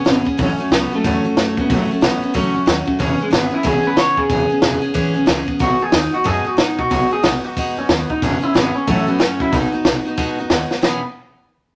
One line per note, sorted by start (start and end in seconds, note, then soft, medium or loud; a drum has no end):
0.00 0.25 C#4 loud
0.04 0.26 G#1 medium
0.04 0.25 G#3 medium
0.04 0.26 B3 medium
0.04 0.25 C#4 medium
0.04 0.24 G#4 medium
0.04 snare loud
0.04 open hi-hat soft
0.25 0.38 B3 medium
0.25 0.37 C#4 medium
0.25 0.38 G#4 medium
0.25 muted upright bass stroke medium
0.25 kick medium
0.38 0.57 A1 loud
0.38 0.58 A2 medium
0.38 0.58 E3 medium
0.38 0.59 F#3 medium
0.38 0.59 A3 medium
0.38 0.59 C#4 medium
0.38 0.57 F#4 medium
0.38 kick loud
0.38 open hi-hat medium
0.58 0.70 F#3 medium
0.58 0.71 A3 medium
0.58 0.71 C#4 medium
0.58 0.71 F#4 medium
0.58 muted upright bass stroke medium
0.70 0.90 C#2 medium
0.70 0.92 F#3 medium
0.70 0.91 A3 medium
0.70 0.92 B3 medium
0.70 0.91 C#4 medium
0.70 0.90 F#4 medium
0.70 snare loud
0.70 open hi-hat medium
0.91 1.03 F#3 soft
0.91 1.04 A3 soft
0.91 1.04 C#4 medium
0.91 1.04 F#4 medium
0.91 muted upright bass stroke medium
1.04 1.24 E2 medium
1.04 1.24 A2 medium
1.04 1.24 E3 loud
1.04 1.25 F#3 medium
1.04 1.24 A3 loud
1.04 1.24 C#4 medium
1.04 1.23 F#4 loud
1.04 kick loud
1.04 open hi-hat medium
1.24 1.36 F#3 medium
1.24 1.36 A3 soft
1.24 1.37 C#4 medium
1.24 1.37 F#4 medium
1.24 muted upright bass stroke medium
1.37 1.56 F#2 loud
1.37 1.57 F#3 medium
1.37 1.57 A3 medium
1.37 1.57 C#4 medium
1.37 1.56 F#4 medium
1.37 snare loud
1.37 open hi-hat medium
1.57 1.69 A2 medium
1.57 1.69 F#3 soft
1.57 1.70 A3 soft
1.57 1.74 B3 medium
1.57 1.70 C#4 medium
1.57 1.70 F#4 medium
1.57 kick medium
1.70 1.89 A1 loud
1.70 1.90 A2 medium
1.70 1.90 E3 medium
1.70 1.90 F#3 medium
1.70 1.90 A3 medium
1.70 1.90 C#4 medium
1.70 1.90 F#4 medium
1.70 kick loud
1.70 open hi-hat medium
1.90 2.00 F#3 soft
1.90 2.01 A3 medium
1.90 2.02 C#4 medium
1.90 2.02 F#4 medium
1.90 muted upright bass stroke medium
2.01 2.22 A1 medium
2.01 2.22 F#3 medium
2.01 2.22 A3 medium
2.01 2.33 B3 loud
2.01 2.22 C#4 medium
2.01 2.21 F#4 medium
2.01 snare loud
2.01 open hi-hat medium
2.22 2.33 F#3 soft
2.22 2.33 A3 soft
2.22 2.33 C#4 soft
2.22 2.34 F#4 soft
2.22 muted upright bass stroke medium
2.34 2.54 C#2 medium
2.34 2.54 A2 medium
2.34 2.54 E3 medium
2.34 2.55 F#3 loud
2.34 2.54 A3 medium
2.34 2.53 C#4 loud
2.34 2.53 F#4 medium
2.34 kick loud
2.34 open hi-hat soft
2.54 2.66 E2 loud
2.54 2.65 F#3 medium
2.54 2.65 A3 soft
2.54 2.66 C#4 medium
2.54 2.67 F#4 medium
2.66 2.86 D#2 loud
2.66 2.87 F#3 medium
2.66 2.86 A3 medium
2.66 2.86 C#4 medium
2.66 2.84 F#4 medium
2.66 snare loud
2.66 open hi-hat soft
2.85 2.99 F#3 medium
2.85 3.00 A3 medium
2.85 2.99 C#4 medium
2.85 2.99 F#4 medium
2.85 muted upright bass stroke medium
2.85 kick medium
2.99 3.19 E1 loud
2.99 3.19 E3 medium
2.99 3.20 G#3 medium
2.99 3.19 B3 medium
2.99 3.18 C#4 medium
2.99 3.17 G#4 medium
2.99 kick loud
2.99 open hi-hat medium
3.18 3.30 B3 medium
3.18 3.30 C#4 medium
3.18 3.31 G#4 medium
3.18 muted upright bass stroke medium
3.23 3.28 G#3 medium
3.30 3.52 G#1 medium
3.30 3.52 G#3 medium
3.30 3.51 B3 medium
3.30 3.51 C#4 medium
3.30 3.50 G#4 medium
3.30 snare loud
3.30 open hi-hat medium
3.51 3.63 B3 soft
3.51 3.63 C#4 medium
3.51 3.66 E4 medium
3.51 3.63 G#4 medium
3.51 muted upright bass stroke medium
3.63 3.84 B1 loud
3.63 3.84 E3 medium
3.63 3.84 G#3 medium
3.63 3.85 B3 medium
3.63 3.84 C#4 loud
3.63 3.82 G#4 medium
3.63 kick loud
3.63 open hi-hat medium
3.83 3.96 B3 soft
3.83 3.96 C#4 medium
3.83 3.97 G#4 medium
3.83 3.99 B4 loud
3.83 muted upright bass stroke medium
3.96 4.17 C#2 medium
3.96 4.17 G#3 medium
3.96 4.17 B3 medium
3.96 4.16 C#4 medium
3.96 4.15 G#4 medium
3.96 4.19 C#5 loud
3.96 snare loud
3.96 open hi-hat soft
4.16 4.29 E2 medium
4.16 4.29 B3 medium
4.16 4.29 C#4 soft
4.16 4.29 G#4 soft
4.16 kick medium
4.29 4.50 E1 loud
4.29 4.50 E3 medium
4.29 4.50 G#3 medium
4.29 4.50 B3 medium
4.29 4.50 C#4 medium
4.29 4.49 G#4 medium
4.29 kick loud
4.29 open hi-hat medium
4.50 4.61 B3 medium
4.50 4.62 C#4 medium
4.50 4.62 G#4 medium
4.50 muted upright bass stroke medium
4.62 4.82 E1 loud
4.62 4.83 G#3 medium
4.62 4.83 B3 medium
4.62 4.82 C#4 medium
4.62 4.80 G#4 medium
4.62 snare loud
4.62 open hi-hat medium
4.82 4.93 B3 medium
4.82 4.94 C#4 medium
4.82 4.94 G#4 medium
4.82 muted upright bass stroke medium
4.94 5.14 G#1 medium
4.94 5.15 E3 loud
4.94 5.15 G#3 loud
4.94 5.15 B3 loud
4.94 5.14 C#4 loud
4.94 5.13 G#4 medium
4.94 kick loud
4.94 open hi-hat soft
5.14 5.27 B1 medium
5.14 5.26 B3 medium
5.14 5.26 C#4 medium
5.14 5.27 G#4 medium
5.26 5.47 C#2 medium
5.26 5.47 G#3 medium
5.26 5.47 B3 medium
5.26 5.47 C#4 medium
5.26 5.45 G#4 medium
5.26 snare loud
5.26 open hi-hat medium
5.46 5.59 B3 medium
5.46 5.60 C#4 medium
5.46 5.60 G#4 medium
5.46 muted upright bass stroke medium
5.46 kick medium
5.59 5.80 B1 loud
5.59 5.80 B2 medium
5.59 5.80 G#3 medium
5.59 5.81 B3 medium
5.59 5.80 D#4 medium
5.59 5.78 F#4 medium
5.59 kick loud
5.59 open hi-hat medium
5.80 5.92 B3 medium
5.80 5.92 D#4 medium
5.80 5.93 F#4 medium
5.80 5.94 G#4 medium
5.80 muted upright bass stroke medium
5.92 6.13 D#2 medium
5.92 6.13 G#3 medium
5.92 6.13 B3 medium
5.92 6.13 D#4 medium
5.92 6.11 F#4 medium
5.92 snare loud
5.92 open hi-hat medium
6.12 6.24 B3 soft
6.12 6.24 D#4 medium
6.12 6.25 F#4 soft
6.12 muted upright bass stroke medium
6.24 6.45 F#2 medium
6.24 6.45 B2 loud
6.24 6.45 G#3 loud
6.24 6.45 B3 medium
6.24 6.45 D#4 loud
6.24 6.43 F#4 medium
6.24 6.47 G#4 loud
6.24 kick loud
6.24 open hi-hat medium
6.45 6.57 B3 soft
6.45 6.57 D#4 medium
6.45 6.57 F#4 medium
6.45 muted upright bass stroke medium
6.57 6.78 G#2 medium
6.57 6.78 G#3 medium
6.57 6.79 B3 medium
6.57 6.78 D#4 medium
6.57 6.77 F#4 medium
6.57 snare loud
6.57 open hi-hat medium
6.78 6.90 B2 medium
6.78 6.90 B3 soft
6.78 6.91 D#4 medium
6.78 6.90 F#4 medium
6.78 kick medium
6.90 7.11 B1 loud
6.90 7.11 B2 medium
6.90 7.11 G#3 medium
6.90 7.12 B3 medium
6.90 7.12 D#4 medium
6.90 7.10 F#4 medium
6.90 kick loud
6.90 open hi-hat medium
7.11 7.23 B3 medium
7.11 7.23 D#4 medium
7.11 7.24 F#4 medium
7.11 7.24 G#4 loud
7.11 muted upright bass stroke medium
7.23 7.44 B1 loud
7.23 7.44 G#3 medium
7.23 7.44 B3 medium
7.23 7.44 D#4 medium
7.23 7.43 F#4 medium
7.23 snare loud
7.23 open hi-hat medium
7.44 7.57 B3 soft
7.44 7.57 D#4 medium
7.44 7.56 F#4 medium
7.44 muted upright bass stroke medium
7.57 7.76 D#2 medium
7.57 7.77 B2 loud
7.57 7.77 G#3 medium
7.57 7.77 B3 medium
7.57 7.77 D#4 loud
7.57 7.76 F#4 loud
7.57 kick loud
7.57 open hi-hat medium
7.77 7.88 F#2 medium
7.77 7.89 B3 soft
7.77 7.91 C#4 medium
7.77 7.90 D#4 medium
7.77 7.89 F#4 medium
7.89 8.09 D#2 loud
7.89 8.10 G#3 medium
7.89 8.10 B3 medium
7.89 8.10 D#4 medium
7.89 8.08 F#4 medium
7.89 snare loud
7.89 open hi-hat soft
8.10 8.22 B3 soft
8.10 8.22 D#4 medium
8.10 8.22 F#4 medium
8.10 muted upright bass stroke medium
8.10 kick medium
8.22 8.42 E1 loud
8.22 8.43 E3 medium
8.22 8.43 G#3 medium
8.22 8.42 B3 medium
8.22 8.41 C#4 medium
8.22 8.40 G#4 medium
8.22 kick loud
8.22 open hi-hat medium
8.41 8.54 B3 medium
8.41 8.54 C#4 medium
8.41 8.56 E4 medium
8.41 8.54 G#4 medium
8.41 muted upright bass stroke medium
8.54 8.74 G#1 loud
8.54 8.75 G#3 medium
8.54 8.75 B3 medium
8.54 8.75 C#4 medium
8.54 8.73 G#4 medium
8.54 snare loud
8.54 open hi-hat medium
8.74 8.88 B3 soft
8.74 8.87 C#4 medium
8.74 8.87 G#4 medium
8.74 muted upright bass stroke medium
8.87 9.07 A1 medium
8.87 9.07 A2 medium
8.87 9.08 E3 loud
8.87 9.08 F#3 medium
8.87 9.07 A3 loud
8.87 9.06 C#4 loud
8.87 9.06 F#4 loud
8.87 kick loud
8.87 open hi-hat medium
9.07 9.17 F#3 soft
9.07 9.18 A3 medium
9.07 9.20 B3 medium
9.07 9.20 C#4 medium
9.07 9.19 F#4 medium
9.07 muted upright bass stroke medium
9.19 9.39 F#2 loud
9.19 9.39 F#3 medium
9.19 9.40 A3 medium
9.19 9.40 C#4 medium
9.19 9.39 F#4 medium
9.19 snare loud
9.19 open hi-hat medium
9.40 9.52 A#1 medium
9.40 9.53 F#3 medium
9.40 9.53 A3 soft
9.40 9.53 C#4 medium
9.40 9.53 E4 medium
9.40 9.52 F#4 medium
9.40 kick medium
9.52 9.72 B1 loud
9.52 9.73 B2 medium
9.52 9.73 G#3 medium
9.52 9.73 B3 medium
9.52 9.72 D#4 medium
9.52 9.71 F#4 medium
9.52 kick loud
9.52 open hi-hat medium
9.72 9.85 B3 medium
9.72 9.85 D#4 medium
9.72 9.85 F#4 medium
9.72 muted upright bass stroke medium
9.85 10.04 B1 medium
9.85 10.06 G#3 medium
9.85 10.06 B3 medium
9.85 10.05 D#4 medium
9.85 10.04 F#4 medium
9.85 snare loud
9.85 open hi-hat medium
10.05 10.17 B3 medium
10.05 10.18 D#4 medium
10.05 10.18 F#4 medium
10.05 muted upright bass stroke medium
10.17 10.37 D#2 medium
10.17 10.38 B2 loud
10.17 10.38 G#3 medium
10.17 10.38 B3 loud
10.17 10.38 D#4 loud
10.17 10.37 F#4 loud
10.17 kick loud
10.17 open hi-hat soft
10.37 10.49 F#2 medium
10.37 10.50 B3 medium
10.37 10.51 D#4 medium
10.37 10.50 F#4 medium
10.50 10.70 D#2 medium
10.50 10.71 G#3 medium
10.50 10.71 B3 medium
10.50 10.71 D#4 medium
10.50 10.70 F#4 medium
10.50 snare loud
10.50 open hi-hat soft
10.70 10.81 B3 soft
10.70 10.83 D#4 medium
10.70 10.83 F#4 medium
10.70 muted upright bass stroke medium
10.70 snare medium
10.82 11.01 E1 loud
10.82 10.98 E3 medium
10.82 10.99 B3 medium
10.82 10.99 C#4 medium
10.82 11.00 G#4 medium
10.82 snare loud